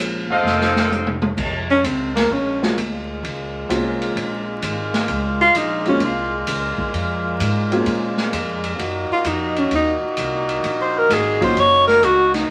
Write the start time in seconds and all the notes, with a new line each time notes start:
Already playing: A#1 G#3 A#3 C#4 F4 C5
0.28 F#1 F3 D#4 A4 C5 D#5 F5
0.32 C4 A4
0.43 F1, snare
0.61 snare
0.76 snare
0.92 hi-hat pedal, mid tom
1.07 mid tom
1.22 mid tom
1.36 F2 A#2 G#3 A#3 F4, kick, crash
1.70 C#4
1.84 C#2 C4, kick, hi-hat pedal, ride
2.15 A#3, snare, ride
2.30 A#1 C#4, kick
2.62 G#3 A#3 C4 C#4 F4, snare
2.76 D2, kick, hi-hat pedal, ride
3.23 C#2, kick, ride
3.69 C2 G#3 A#3 C4 C#4 F4, kick, hi-hat pedal, ride
4.01 ride
4.15 A#1, kick, ride
4.62 G#1, kick, hi-hat pedal, ride
4.94 snare, ride
5.08 C#2, kick, ride
5.41 F4
5.54 A#1 D#4, kick, hi-hat pedal, ride
5.85 G#3 A#3 C4 C#4 F4, ride
6.00 C2, kick, ride
6.05 F4
6.47 C#2, kick, hi-hat pedal, ride
6.78 kick
6.93 F2, kick, ride
7.40 G#2, kick, hi-hat pedal, ride
7.71 G#3 A#3 C4 C#4 F4, ride
7.86 A#2, kick, ride
8.17 snare
8.32 F2, kick, hi-hat pedal, ride
8.64 ride
8.77 F#2 D#4 F#4, kick, ride
9.13 F4
9.24 F2 D#4, kick, hi-hat pedal, ride
9.56 C#4, ride
9.71 D#2, kick, ride
9.75 D#4
10.02 muted upright bass stroke
10.17 C2, kick, hi-hat pedal, ride
10.49 ride
10.63 A#1, kick, ride
10.81 C5
10.98 A#4
11.09 G#1 G#4, kick, snare, hi-hat pedal, ride
11.40 F#3 A#3 C#4 D#4 F4 C5, kick, ride
11.56 F#1 C#5, kick, ride
11.88 A#4, snare
12.02 C#2 F#4, kick, hi-hat pedal, ride
12.34 D#4, snare, ride